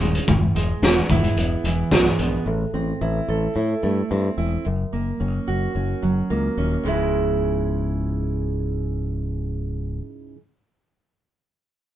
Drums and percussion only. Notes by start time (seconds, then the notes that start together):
0.01 closed hi-hat
0.15 closed hi-hat
0.28 kick, closed hi-hat
0.56 closed hi-hat
0.83 snare, closed hi-hat
1.10 kick, closed hi-hat
1.24 closed hi-hat
1.37 closed hi-hat
1.65 closed hi-hat
1.91 kick, snare, closed hi-hat
2.19 closed hi-hat